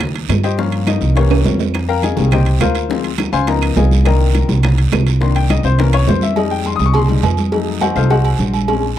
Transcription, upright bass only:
0.00 0.26 D#2 loud
0.29 0.96 G2 medium
1.01 1.42 C2 loud
1.44 2.12 F2 medium
2.17 2.58 C2 loud
2.60 3.27 D2 medium
3.32 3.73 C#2 loud
3.76 4.43 C2 loud
4.49 4.89 C2 loud
4.92 5.59 C2 loud
5.64 6.04 C2 loud
6.07 6.74 F2 medium
6.79 7.20 C2 loud
7.23 7.90 F2 medium
7.95 8.36 C2 loud
8.39 8.99 A#1 loud

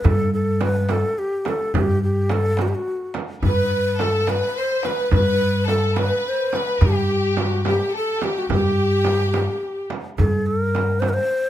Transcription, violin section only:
3.43 3.96 B4 medium
3.99 4.28 A4 medium
4.28 4.56 B4 medium
4.57 4.85 C5 medium
4.85 5.12 B4 medium
5.13 5.65 B4 medium
5.67 5.96 A4 medium
5.95 6.51 B4 medium
6.53 6.79 B4 medium
6.79 7.64 G4 medium
7.65 7.91 G4 medium
7.93 8.21 A4 medium
8.21 8.49 G4 medium
8.50 9.87 G4 medium

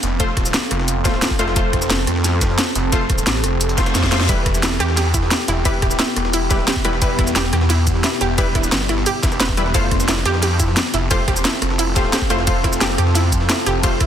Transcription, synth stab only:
0.00 0.18 A3 medium
0.00 0.18 F4 medium
0.00 0.18 C5 medium
0.20 0.29 A3 loud
0.20 0.29 F4 medium
0.20 0.29 C5 loud
1.05 1.37 A3 medium
1.05 1.37 F4 medium
1.05 1.37 C5 medium
1.39 1.45 A3 loud
1.39 1.45 F4 medium
1.39 1.45 C5 loud
1.56 2.91 A3 medium
1.56 2.91 F4 medium
1.56 2.91 C5 loud
2.93 3.02 A3 loud
2.93 3.02 F4 medium
2.93 3.02 C5 loud
3.78 4.10 A3 medium
3.78 4.10 F4 medium
3.78 4.10 C5 medium
4.12 4.18 A3 medium
4.12 4.18 F4 medium
4.12 4.18 C5 loud
4.29 5.63 G3 medium
4.29 5.63 E4 medium
4.29 5.63 B4 medium
5.65 5.74 G3 loud
5.65 5.74 E4 medium
5.65 5.74 B4 loud
6.51 6.83 G3 medium
6.51 6.83 E4 medium
6.51 6.83 B4 medium
6.85 6.90 G3 medium
6.85 6.90 E4 medium
6.85 6.90 B4 loud
7.02 8.36 G3 medium
7.02 8.36 E4 medium
7.02 8.36 B4 loud
8.38 8.47 G3 loud
8.38 8.47 E4 medium
8.38 8.47 B4 loud
9.57 9.63 G3 medium
9.57 9.63 E4 medium
9.57 9.63 B4 medium
9.74 11.09 A3 medium
9.74 11.09 F4 medium
9.74 11.09 C5 medium
11.11 11.20 A3 loud
11.11 11.20 F4 medium
11.11 11.20 C5 loud
11.96 12.28 A3 medium
11.96 12.28 F4 medium
11.96 12.28 C5 medium
12.30 12.36 A3 loud
12.30 12.36 F4 medium
12.30 12.36 C5 loud
12.47 13.81 A3 medium
12.47 13.81 F4 medium
12.47 13.81 C5 medium
13.83 13.92 A3 loud
13.83 13.92 F4 medium
13.83 13.92 C5 loud

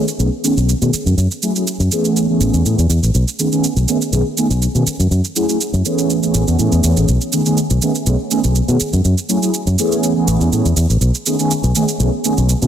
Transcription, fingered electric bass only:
0.19 0.28 B1 medium
0.57 0.72 B1 medium
0.82 0.89 B2 medium
0.93 muted fingered electric bass stroke soft
1.06 1.13 F#2 medium
1.17 1.26 F#2 medium
1.80 1.87 F#2 medium
2.40 2.49 A1 medium
2.53 2.61 E2 medium
2.65 2.74 A2 medium
2.78 2.86 E2 medium
2.89 2.98 E2 medium
3.03 3.10 A1 medium
3.15 3.23 B1 medium
3.76 3.84 B1 medium
4.13 4.21 B1 medium
4.50 4.66 B1 medium
4.75 4.82 B2 medium
4.86 muted fingered electric bass stroke soft
4.99 5.07 F#2 medium
5.11 5.20 F#2 medium
5.74 5.81 F#2 medium
6.34 6.43 A1 medium
6.48 6.55 E2 medium
6.59 6.67 A2 medium
6.72 6.79 E2 medium
6.84 6.92 E2 medium
6.97 7.04 A1 medium
7.08 7.17 B1 medium
7.71 7.78 B1 medium
8.07 8.15 B1 medium
8.44 8.59 B1 medium
8.68 8.76 B2 medium
8.80 muted fingered electric bass stroke soft
8.93 9.01 F#2 medium
9.05 9.13 F#2 medium
9.67 9.74 F#2 medium
10.27 10.36 A1 medium
10.40 10.48 E2 medium
10.52 10.61 A2 medium
10.65 10.73 E2 medium
10.76 10.85 E2 medium
10.90 10.97 A1 medium
11.01 11.10 B1 medium
11.64 11.71 B1 medium
12.00 12.08 B1 medium
12.38 12.53 B1 medium
12.62 12.67 B2 medium

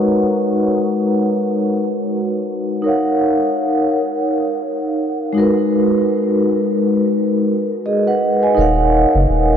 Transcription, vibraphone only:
0.00 2.44 G#3 medium
0.00 2.45 D#4 medium
0.00 2.46 F#4 medium
0.00 2.47 A#4 medium
0.00 2.48 B4 medium
0.00 2.86 C#5 soft
2.82 5.30 D#4 medium
2.82 5.30 A#4 medium
2.82 5.31 C#5 medium
2.87 5.32 F5 medium
2.87 5.33 F#5 medium
5.33 8.16 G#3 medium
5.33 8.16 D#4 medium
5.33 8.17 F#4 medium
5.38 7.82 A#4 medium
5.38 7.83 B4 medium
7.86 8.06 G#4 medium
7.86 8.05 D#5 medium
8.07 8.41 B4 medium
8.07 8.41 F#5 medium
8.43 8.77 D#5 medium
8.43 8.76 G#5 medium
8.55 9.57 D#4 medium
8.55 9.57 A#4 medium
8.55 9.57 C#5 medium
8.60 9.57 F5 medium
8.60 9.57 F#5 medium

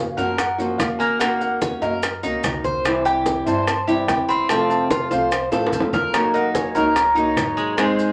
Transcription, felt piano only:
0.00 0.15 F5 medium
0.17 0.22 F#5 medium
0.38 0.81 F#5 medium
0.78 0.98 F5 medium
0.99 1.21 G#5 medium
1.19 1.39 F#5 loud
1.41 1.79 F#5 medium
1.82 2.20 D#5 medium
3.05 3.44 G5 medium
3.47 3.66 A5 medium
3.67 4.06 A5 medium
4.08 4.30 G5 medium
4.29 4.48 B5 loud
4.49 4.68 A5 loud
4.70 5.08 A5 medium
5.11 5.49 F5 medium
6.14 6.35 A#5 medium
6.34 6.56 F#5 medium
6.55 6.76 G#5 medium
6.75 6.94 A#5 medium
6.95 7.74 A#5 medium
7.77 8.12 G#5 medium

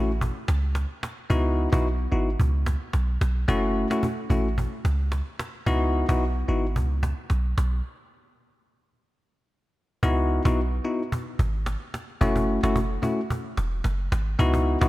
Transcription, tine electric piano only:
0.00 0.11 A3 medium
0.00 0.11 C#4 medium
0.00 0.11 E4 medium
0.00 0.11 F#4 medium
1.30 1.69 B3 medium
1.30 1.69 D#4 medium
1.30 1.69 E4 medium
1.30 1.69 F#4 loud
1.72 1.87 B3 medium
1.72 1.87 D#4 medium
1.72 1.87 E4 medium
1.72 1.87 F#4 medium
2.12 2.29 B3 medium
2.12 2.29 D#4 medium
2.12 2.29 E4 medium
2.12 2.29 F#4 medium
3.48 3.87 A3 medium
3.48 3.87 C#4 medium
3.48 3.87 E4 medium
3.48 3.87 F#4 loud
3.90 4.05 A3 medium
3.90 4.05 C#4 medium
3.90 4.06 E4 medium
3.90 4.06 F#4 medium
4.30 4.47 A3 medium
4.30 4.47 C#4 medium
4.30 4.47 E4 medium
4.30 4.47 F#4 medium
5.66 6.05 B3 loud
5.66 6.05 D#4 medium
5.66 6.05 E4 medium
5.66 6.05 F#4 loud
6.09 6.24 B3 medium
6.09 6.24 D#4 medium
6.09 6.24 E4 medium
6.09 6.24 F#4 medium
6.48 6.65 B3 medium
6.48 6.65 D#4 medium
6.48 6.66 E4 medium
6.48 6.66 F#4 medium
10.03 10.42 B3 medium
10.03 10.42 D#4 medium
10.03 10.42 E4 medium
10.03 10.42 F#4 loud
10.45 10.60 B3 medium
10.45 10.60 D#4 medium
10.45 10.60 E4 medium
10.45 10.60 F#4 medium
10.84 11.02 B3 medium
10.84 11.02 D#4 medium
10.84 11.02 E4 medium
10.84 11.02 F#4 medium
12.21 12.60 A3 medium
12.21 12.60 C#4 medium
12.21 12.60 E4 medium
12.21 12.60 F#4 loud
12.63 12.78 A3 medium
12.63 12.78 C#4 medium
12.63 12.78 E4 medium
12.63 12.78 F#4 medium
13.02 13.20 A3 medium
13.02 13.20 C#4 medium
13.02 13.20 E4 medium
13.02 13.20 F#4 medium
14.39 14.78 B3 medium
14.39 14.78 D#4 medium
14.39 14.78 E4 medium
14.39 14.78 F#4 loud
14.81 14.89 B3 medium
14.81 14.89 D#4 medium
14.81 14.89 E4 medium
14.81 14.89 F#4 medium

